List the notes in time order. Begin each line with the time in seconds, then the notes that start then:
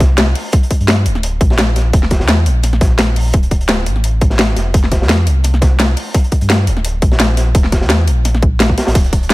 Already playing: C2
0.00 kick, snare, closed hi-hat
0.17 snare, closed hi-hat
0.35 closed hi-hat, open hi-hat
0.52 kick, closed hi-hat
0.63 closed hi-hat
0.71 kick, closed hi-hat
0.80 G2, closed hi-hat
0.88 snare, closed hi-hat
1.06 D1, closed hi-hat
1.15 snare
1.23 closed hi-hat
1.41 A#1, kick, closed hi-hat
1.50 snare
1.59 snare, closed hi-hat
1.76 snare, closed hi-hat
1.93 E1, kick, closed hi-hat
2.03 snare
2.10 kick, snare, closed hi-hat
2.20 E2, snare
2.28 snare, closed hi-hat
2.46 A#1, closed hi-hat
2.63 snare, closed hi-hat
2.73 snare
2.81 A#1, kick, snare, closed hi-hat
2.98 snare, closed hi-hat
3.16 closed hi-hat, open hi-hat
3.33 D1, kick, closed hi-hat
3.43 closed hi-hat
3.51 kick, closed hi-hat
3.61 closed hi-hat
3.69 snare, closed hi-hat
3.86 A1, closed hi-hat
3.96 snare
4.04 closed hi-hat
4.21 kick, closed hi-hat
4.30 snare
4.39 snare, closed hi-hat
4.56 F1, snare, closed hi-hat
4.74 kick, closed hi-hat
4.84 snare
4.92 kick, snare, closed hi-hat
5.01 F2, snare
5.09 snare, closed hi-hat
5.26 C2, closed hi-hat
5.44 snare, closed hi-hat
5.54 snare
5.61 kick, snare, closed hi-hat
5.79 snare, closed hi-hat
5.97 closed hi-hat, open hi-hat
6.14 kick, closed hi-hat
6.24 closed hi-hat
6.32 kick, closed hi-hat
6.41 G2, closed hi-hat
6.50 snare, closed hi-hat
6.67 D1, closed hi-hat
6.77 snare
6.85 closed hi-hat
7.02 A#1, kick, closed hi-hat
7.12 snare
7.20 snare, closed hi-hat
7.37 snare, closed hi-hat
7.55 E1, kick, closed hi-hat
7.64 snare
7.72 kick, snare, closed hi-hat
7.81 E2, snare
7.89 snare, closed hi-hat
8.07 A#1, closed hi-hat
8.25 snare, closed hi-hat
8.35 snare
8.42 kick, closed hi-hat
8.60 snare, closed hi-hat
8.70 kick
8.78 snare, closed hi-hat
8.87 A#1, snare, closed hi-hat
8.95 D1, kick, closed hi-hat, ride bell
9.04 closed hi-hat
9.13 kick, closed hi-hat, ride bell
9.23 closed hi-hat
9.30 snare, closed hi-hat, ride bell